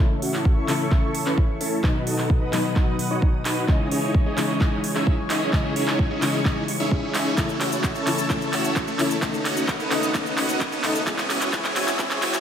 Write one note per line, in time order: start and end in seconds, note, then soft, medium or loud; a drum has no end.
0.00 0.20 A1 medium
0.00 0.65 C#3 medium
0.00 0.65 E3 medium
0.00 0.66 A3 medium
0.00 0.19 C#4 medium
0.00 0.19 E4 medium
0.00 0.66 E4 medium
0.00 0.20 A4 loud
0.00 1.82 A4 medium
0.00 1.82 C#5 medium
0.00 1.82 E5 medium
0.00 1.82 C#6 medium
0.00 riser medium
0.22 0.55 A1 loud
0.22 0.54 C#4 medium
0.22 0.54 E4 medium
0.22 0.54 F#4 medium
0.22 open hi-hat medium
0.34 clap soft
0.45 kick loud
0.57 0.89 A1 medium
0.57 0.86 C#4 medium
0.57 0.86 E4 medium
0.57 0.86 A4 loud
0.67 1.80 C#3 loud
0.67 1.81 E3 medium
0.67 1.81 A3 medium
0.67 1.82 E4 loud
0.67 clap soft
0.67 open hi-hat loud
0.91 1.24 A1 loud
0.91 1.10 C#4 medium
0.91 1.10 E4 medium
0.91 kick loud
0.91 clap soft
1.15 open hi-hat loud
1.26 1.58 A1 medium
1.26 1.45 C#4 medium
1.26 1.45 E4 medium
1.26 1.45 B4 loud
1.26 clap soft
1.38 kick loud
1.61 1.81 A2 loud
1.61 1.81 C#4 medium
1.61 1.81 E4 medium
1.61 1.81 A4 medium
1.61 open hi-hat loud
1.83 2.05 B1 medium
1.83 2.50 B2 medium
1.83 2.50 D#3 medium
1.83 2.50 F#3 medium
1.83 2.04 D#4 medium
1.83 2.51 D#4 medium
1.83 2.04 F#4 medium
1.83 3.67 B4 medium
1.83 2.04 B4 loud
1.83 3.67 D#5 medium
1.83 3.67 F#5 medium
1.83 5.49 D#6 medium
1.83 kick loud
1.83 clap medium
2.07 2.39 B1 loud
2.07 2.39 D#4 medium
2.07 2.39 F#4 medium
2.07 2.39 A4 medium
2.07 open hi-hat loud
2.18 clap soft
2.30 kick loud
2.41 2.74 B1 medium
2.41 2.71 D#4 medium
2.41 2.71 F#4 medium
2.41 2.71 B4 loud
2.52 3.65 B2 loud
2.52 3.65 D#3 medium
2.52 3.66 F#3 medium
2.52 3.66 D#4 loud
2.52 clap medium
2.52 open hi-hat loud
2.76 3.08 B1 loud
2.76 2.95 D#4 medium
2.76 kick loud
2.76 clap medium
2.99 open hi-hat loud
3.11 3.43 B1 medium
3.11 3.29 D#4 medium
3.11 3.29 F#4 medium
3.11 3.29 C#5 loud
3.22 kick loud
3.45 3.66 B1 medium
3.45 3.66 D#4 medium
3.45 3.66 F#4 medium
3.45 3.66 B4 medium
3.45 clap medium
3.45 open hi-hat loud
3.67 3.89 C#2 loud
3.67 4.34 C#3 medium
3.67 4.35 E3 medium
3.67 4.35 G#3 medium
3.67 3.89 C#4 medium
3.67 3.89 D#4 medium
3.67 3.89 E4 medium
3.67 3.89 G#4 medium
3.67 7.34 C#5 medium
3.67 3.89 D#5 loud
3.67 4.35 D#5 medium
3.67 7.34 G#5 medium
3.67 kick loud
3.67 clap medium
3.92 4.24 C#2 loud
3.92 4.23 C#4 medium
3.92 4.23 D#4 medium
3.92 4.23 E4 medium
3.92 4.23 G#4 medium
3.92 4.23 C#5 medium
3.92 open hi-hat loud
4.15 kick loud
4.26 4.58 C#2 medium
4.26 4.56 C#4 medium
4.26 4.56 D#4 medium
4.26 4.56 E4 medium
4.26 4.56 G#4 medium
4.26 4.56 D#5 loud
4.36 5.50 C#3 loud
4.36 5.50 E3 medium
4.36 5.50 G#3 medium
4.36 5.51 D#4 loud
4.36 clap medium
4.36 open hi-hat loud
4.61 4.93 C#2 loud
4.61 4.79 C#4 medium
4.61 4.79 D#4 medium
4.61 4.79 E4 medium
4.61 4.79 G#4 medium
4.61 4.79 D#5 medium
4.61 kick loud
4.61 clap medium
4.84 open hi-hat loud
4.95 5.28 C#2 loud
4.95 5.14 C#4 medium
4.95 5.14 D#4 medium
4.95 5.14 E4 medium
4.95 5.14 G#4 medium
4.95 5.14 E5 loud
4.95 clap medium
5.07 kick loud
5.30 5.51 C#2 loud
5.30 5.50 C#4 medium
5.30 5.50 D#4 medium
5.30 5.50 E4 medium
5.30 5.50 G#4 medium
5.30 5.50 D#5 medium
5.30 clap medium
5.30 open hi-hat loud
5.52 5.74 C#2 loud
5.52 6.19 C#3 medium
5.52 6.19 E3 medium
5.52 6.20 G#3 medium
5.52 5.73 C#4 medium
5.52 5.73 D#4 medium
5.52 5.73 E4 medium
5.52 5.73 G#4 medium
5.52 5.73 D#5 loud
5.52 6.20 D#5 medium
5.52 7.36 C#6 medium
5.52 kick loud
5.52 clap medium
5.76 6.08 C#2 loud
5.76 6.08 C#4 medium
5.76 6.08 D#4 medium
5.76 6.08 E4 medium
5.76 6.08 G#4 medium
5.76 6.08 C#5 medium
5.76 open hi-hat loud
5.88 clap medium
5.99 kick loud
6.11 6.43 C#2 medium
6.11 6.40 C#4 medium
6.11 6.40 D#4 medium
6.11 6.40 E4 medium
6.11 6.40 G#4 medium
6.11 6.40 D#5 loud
6.21 7.34 C#3 loud
6.21 7.35 E3 medium
6.21 7.35 G#3 medium
6.21 clap medium
6.21 open hi-hat loud
6.45 6.78 C#2 loud
6.45 6.64 C#4 medium
6.45 6.64 D#4 medium
6.45 6.64 E4 medium
6.45 6.64 G#4 medium
6.45 6.64 D#5 medium
6.45 kick loud
6.45 clap medium
6.68 open hi-hat loud
6.80 6.89 C#2 medium
6.80 6.89 C#4 medium
6.80 6.89 D#4 medium
6.80 6.89 E4 medium
6.80 6.89 G#4 medium
6.80 6.89 E5 medium
6.91 7.35 C#2 medium
6.91 7.35 C#4 medium
6.91 7.35 D#4 medium
6.91 7.35 E4 medium
6.91 7.35 G#4 medium
6.91 kick loud
7.14 clap medium
7.14 open hi-hat loud
7.36 7.58 A1 loud
7.36 8.04 C#3 medium
7.36 8.04 E3 medium
7.36 8.04 A3 medium
7.36 7.58 E4 medium
7.36 8.05 E4 medium
7.36 9.20 C#5 medium
7.36 9.20 A5 medium
7.36 9.20 E6 medium
7.36 kick loud
7.36 clap medium
7.36 shaker medium
7.49 shaker soft
7.61 7.93 A1 loud
7.61 7.93 C#4 medium
7.61 7.93 E4 medium
7.61 7.93 F#4 medium
7.61 clap medium
7.61 open hi-hat loud
7.72 shaker medium
7.84 kick loud
7.84 clap medium
7.84 shaker medium
7.95 8.28 A1 medium
7.95 8.25 C#4 medium
7.95 8.25 E4 medium
7.95 8.25 A4 loud
7.95 shaker soft
8.06 8.27 C#3 medium
8.06 8.28 E3 medium
8.06 8.28 A3 medium
8.06 8.29 E4 loud
8.06 clap medium
8.06 open hi-hat loud
8.18 shaker medium
8.29 8.96 C#3 medium
8.29 8.96 E3 medium
8.29 8.97 A3 medium
8.29 8.50 C#4 medium
8.29 8.50 E4 medium
8.29 8.97 E4 medium
8.29 8.50 A4 loud
8.29 kick loud
8.29 clap medium
8.29 shaker medium
8.41 shaker soft
8.53 8.85 A1 loud
8.53 8.85 C#4 medium
8.53 8.85 E4 medium
8.53 8.85 F#4 medium
8.53 clap medium
8.53 open hi-hat loud
8.65 shaker medium
8.76 kick loud
8.76 clap medium
8.76 shaker medium
8.88 9.20 A2 medium
8.88 9.17 C#4 medium
8.88 9.17 E4 medium
8.88 9.17 A4 loud
8.88 shaker soft
8.98 9.20 C#3 medium
8.98 9.20 E3 medium
8.98 9.21 A3 medium
8.98 9.21 E4 loud
8.98 clap medium
8.98 open hi-hat loud
9.11 shaker medium
9.21 9.43 B1 loud
9.21 9.88 C#3 medium
9.21 9.89 D#3 medium
9.21 9.89 A3 medium
9.21 9.43 D#4 medium
9.21 9.89 D#4 medium
9.21 9.43 A4 loud
9.21 11.05 B4 medium
9.21 11.05 D#5 medium
9.21 11.05 F#5 medium
9.21 12.40 D#6 medium
9.21 kick loud
9.21 clap medium
9.21 shaker medium
9.34 shaker soft
9.45 9.78 B1 loud
9.45 9.77 C#4 medium
9.45 9.77 D#4 medium
9.45 9.77 F#4 medium
9.45 clap medium
9.45 open hi-hat loud
9.57 shaker medium
9.68 kick loud
9.68 clap medium
9.68 shaker medium
9.80 10.12 B1 medium
9.80 10.09 C#4 medium
9.80 10.09 D#4 medium
9.80 10.09 A4 loud
9.80 shaker soft
9.90 10.12 C#3 loud
9.90 10.13 D#3 medium
9.90 10.13 A3 medium
9.90 10.13 D#4 loud
9.90 clap medium
9.90 open hi-hat loud
10.03 shaker medium
10.13 10.35 B1 loud
10.13 10.80 C#3 medium
10.13 10.81 D#3 medium
10.13 10.82 D#4 medium
10.13 kick loud
10.13 clap medium
10.13 shaker medium
10.26 shaker soft
10.38 10.70 B1 medium
10.38 10.69 C#4 medium
10.38 10.69 D#4 medium
10.38 10.69 F#4 medium
10.38 clap medium
10.38 open hi-hat loud
10.49 shaker medium
10.61 kick loud
10.61 clap medium
10.61 shaker medium
10.72 11.05 B1 medium
10.72 11.02 C#4 medium
10.72 11.02 D#4 medium
10.72 11.02 A4 loud
10.72 shaker soft
10.83 11.04 C#3 medium
10.83 11.05 D#3 medium
10.83 11.05 A3 medium
10.83 11.06 D#4 loud
10.83 clap medium
10.83 open hi-hat loud
10.95 shaker medium
11.06 11.28 C#2 loud
11.06 11.50 C#3 medium
11.06 11.51 E3 medium
11.06 11.51 G#3 medium
11.06 11.27 C#4 medium
11.06 11.27 E4 medium
11.06 11.52 E4 medium
11.06 11.27 G#4 loud
11.06 12.40 C#5 medium
11.06 12.40 E5 medium
11.06 12.40 G#5 medium
11.06 kick loud
11.06 clap medium
11.06 shaker medium
11.18 clap medium
11.18 shaker soft
11.30 11.51 C#2 loud
11.30 11.51 C#4 medium
11.30 11.51 E4 medium
11.30 11.51 F#4 medium
11.30 clap medium
11.30 open hi-hat medium
11.41 clap medium
11.41 shaker medium
11.52 11.74 C#2 medium
11.52 11.96 C#3 medium
11.52 11.97 E3 medium
11.52 11.98 G#3 medium
11.52 11.73 C#4 medium
11.52 11.73 E4 medium
11.52 11.98 E4 medium
11.52 11.73 G#4 loud
11.52 kick loud
11.52 clap loud
11.52 shaker medium
11.65 clap medium
11.65 shaker soft
11.76 11.97 C#2 medium
11.76 11.97 C#4 medium
11.76 11.97 E4 medium
11.76 11.97 F#4 medium
11.76 clap loud
11.76 open hi-hat loud
11.88 clap medium
11.88 shaker medium
11.98 12.20 C#2 loud
11.98 12.40 C#3 medium
11.98 12.40 E3 medium
11.98 12.40 G#3 medium
11.98 12.19 C#4 medium
11.98 12.19 E4 medium
11.98 12.40 E4 medium
11.98 12.19 G#4 loud
11.98 kick loud
11.98 clap loud
11.98 shaker medium
12.11 clap medium
12.11 shaker soft
12.22 12.40 C#2 loud
12.22 12.40 C#4 medium
12.22 12.40 E4 medium
12.22 12.40 F#4 medium
12.22 clap loud
12.22 open hi-hat loud
12.34 clap medium
12.34 shaker medium